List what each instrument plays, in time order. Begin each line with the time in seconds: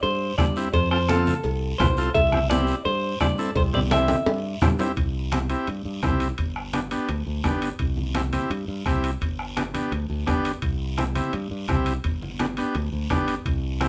0.03 fingered electric bass G2, clean electric guitar C5, cowbell, high conga, long guiro
0.38 fingered electric bass G2, transistor combo organ C4 E4 G4, clean electric guitar D5, bombo low, bombo rim, cowbell, high conga, short guiro
0.56 transistor combo organ C4 E4 G4, short guiro
0.73 fingered electric bass F2, clean electric guitar C5, bombo low, cowbell, high conga, long guiro
0.91 transistor combo organ C4 F4 A4, clean electric guitar C5, bombo rim
1.08 transistor combo organ C4 F4 A4, clean electric guitar A4, bombo rim, cowbell, high conga, short guiro
1.26 high conga, short guiro
1.43 fingered electric bass C2, cowbell, high conga, long guiro
1.78 fingered electric bass C2, transistor combo organ C4 F4 B4, clean electric guitar C5, bombo low, bombo rim, cowbell, high conga, low conga, low timbale, short guiro
1.97 transistor combo organ C4 F4 A4, short guiro
2.14 fingered electric bass C2, clean electric guitar E5, bombo low, cowbell, high conga, long guiro
2.32 transistor combo organ C4 E4 G4, bombo rim, high conga
2.50 transistor combo organ C4 E4 G4, clean electric guitar D5, bombo rim, cowbell, high conga, short guiro
2.67 short guiro
2.85 fingered electric bass G2, clean electric guitar C5, cowbell, high conga, long guiro
3.20 fingered electric bass G2, transistor combo organ C4 E4 G4, clean electric guitar D5, bombo low, bombo rim, cowbell, high conga, short guiro
3.38 transistor combo organ C4 E4 A4, short guiro
3.56 fingered electric bass C2, clean electric guitar C5, bombo low, cowbell, high conga, long guiro
3.73 transistor combo organ C4 E4 G4, clean electric guitar D5, high conga, low conga
3.91 transistor combo organ C4 E4 G4, clean electric guitar E5, bombo rim, cowbell, high conga, high timbale, short guiro
4.08 high conga, high timbale, short guiro
4.26 fingered electric bass G2, cowbell, high conga, high timbale, long guiro
4.61 fingered electric bass G2, transistor combo organ C4 E4 G4, bombo low, bombo rim, cowbell, high conga, low conga, low timbale, short guiro
4.79 transistor combo organ C4 E4 G4, low timbale, short guiro
4.96 fingered electric bass C2, bombo low, high conga, high timbale, long guiro
5.32 transistor combo organ C4 E4 G4, bombo rim, high conga, high timbale, short guiro
5.50 transistor combo organ C4 E4 G4, high timbale, short guiro
5.67 fingered electric bass G2, high conga, high timbale, long guiro
5.85 fingered electric bass G2
6.02 fingered electric bass C2, transistor combo organ C4 E4 G4, bombo low, bombo rim, high conga, high timbale, low timbale, short guiro
6.20 high timbale, short guiro
6.38 fingered electric bass G1, bombo low, high conga, high timbale, long guiro
6.56 bombo rim
6.73 transistor combo organ B3 D4 G4, bombo rim, high conga, high timbale, short guiro
6.91 transistor combo organ B3 D4 G4, high timbale, short guiro
7.09 fingered electric bass D2, high conga, high timbale, long guiro
7.27 fingered electric bass D2
7.44 fingered electric bass G1, transistor combo organ B3 D4 G4, bombo low, bombo rim, high conga, high timbale, low timbale, short guiro
7.62 high timbale, short guiro
7.79 fingered electric bass C2, bombo low, high conga, high timbale, long guiro
7.97 high conga
8.15 transistor combo organ C4 E4 G4, bombo rim, high conga, high timbale, short guiro
8.33 transistor combo organ C4 E4 G4, high conga, high timbale, short guiro
8.50 fingered electric bass G2, high conga, high timbale, long guiro
8.68 fingered electric bass G2
8.86 fingered electric bass C2, transistor combo organ C4 E4 G4, bombo low, bombo rim, high conga, high timbale, short guiro
9.04 high timbale, short guiro
9.21 fingered electric bass G1, bombo low, high conga, high timbale, long guiro
9.39 bombo rim
9.57 transistor combo organ B3 D4 G4, bombo rim, high conga, high timbale, short guiro
9.74 transistor combo organ B3 D4 G4, high conga, high timbale, short guiro
9.92 fingered electric bass D2, high conga, high timbale, long guiro
10.10 fingered electric bass D2
10.26 fingered electric bass G1, transistor combo organ B3 D4 G4, bombo low, bombo rim, high conga, high timbale, low timbale, short guiro
10.45 high timbale, short guiro
10.62 fingered electric bass C2, bombo low, high conga, high timbale, long guiro
10.98 transistor combo organ C4 E4 G4, bombo rim, high conga, high timbale, short guiro
11.15 transistor combo organ C4 E4 G4, high conga, high timbale, short guiro
11.33 fingered electric bass G2, high conga, high timbale, long guiro
11.51 fingered electric bass G2
11.68 fingered electric bass C2, transistor combo organ C4 E4 G4, bombo low, bombo rim, high conga, high timbale, short guiro
11.86 high timbale, short guiro
12.04 fingered electric bass G1, bombo low, high conga, high timbale, long guiro
12.22 high conga
12.39 transistor combo organ B3 D4 G4, bombo rim, high conga, high timbale, short guiro
12.57 transistor combo organ B3 D4 G4, high timbale, short guiro
12.74 fingered electric bass D2, high conga, high timbale, long guiro
12.92 fingered electric bass D2
13.10 fingered electric bass G1, transistor combo organ B3 D4 G4, bombo low, bombo rim, high conga, high timbale, low timbale, short guiro
13.28 high timbale, short guiro
13.45 fingered electric bass C2, bombo low, high conga, high timbale, long guiro
13.81 transistor combo organ C4 E4 G4, bombo rim, high conga, high timbale, short guiro